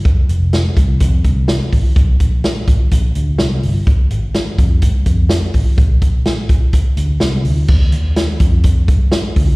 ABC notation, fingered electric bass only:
X:1
M:4/4
L:1/8
Q:1/4=126
K:Eb
V:1 name="Fingered electric bass" clef=bass
F,,, F,,,2 C,, F,, C,,2 A,,, | B,,, B,,,2 A,,, B,,, D,, C,, G,,, | A,,, A,,,2 F,, A,, F,,2 A,,, | B,,, B,,,2 A,,, B,,, D,, C,, D,, |
E,, E,,2 F,,2 G,,2 D,, |]